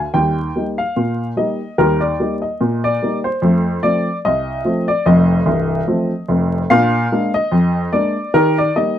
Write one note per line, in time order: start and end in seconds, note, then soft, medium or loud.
0.00 0.14 G#5 medium
0.14 0.49 D#2 medium
0.14 0.38 G3 soft
0.14 0.65 G5 medium
0.56 0.78 G3 soft
0.56 0.78 A#3 soft
0.56 0.79 D#4 soft
0.78 1.25 F5 medium
0.96 1.31 A#2 medium
1.37 1.59 G3 soft
1.37 1.60 A#3 soft
1.37 1.60 D#4 soft
1.37 1.76 D#5 medium
1.78 2.13 D#2 medium
1.78 2.02 G3 soft
1.78 2.01 A#4 medium
2.01 2.33 D5 medium
2.20 2.42 G3 soft
2.20 2.42 A#3 soft
2.20 2.43 D#4 soft
2.42 2.81 D#5 medium
2.61 2.95 A#2 medium
2.84 3.16 D5 medium
3.02 3.24 G3 soft
3.02 3.25 A#3 soft
3.02 3.25 D#4 soft
3.24 3.80 C5 medium
3.42 3.77 F2 medium
3.42 3.66 A3 soft
3.83 4.05 F3 soft
3.83 4.06 A3 soft
3.83 4.06 C4 soft
3.83 4.16 D5 medium
4.25 4.60 C2 medium
4.25 4.85 D#5 medium
4.64 4.87 F3 soft
4.64 4.88 A3 soft
4.64 4.88 C4 soft
4.88 5.06 D5 medium
5.06 5.39 F1 medium
5.06 5.38 F2 medium
5.06 6.25 D#5 medium
5.46 5.79 C1 medium
5.46 5.79 C2 medium
5.87 6.10 F3 soft
5.87 6.10 A3 medium
5.87 6.10 C4 soft
6.28 6.61 F1 medium
6.28 6.61 F2 medium
6.70 7.05 A#2 medium
6.70 6.94 D4 medium
6.70 7.30 F5 medium
7.12 7.34 G#3 soft
7.12 7.34 A#3 soft
7.12 7.35 D4 soft
7.34 7.90 D#5 medium
7.52 7.86 F2 medium
7.92 8.15 G#3 soft
7.92 8.16 A#3 soft
7.92 8.16 D4 soft
7.92 8.31 D5 medium
8.34 8.68 D#3 medium
8.34 8.58 G4 medium
8.34 8.56 A#4 medium
8.58 8.75 D5 medium
8.76 8.98 G3 soft
8.76 8.98 A#3 soft
8.76 8.99 D#4 soft
8.76 8.99 D#5 medium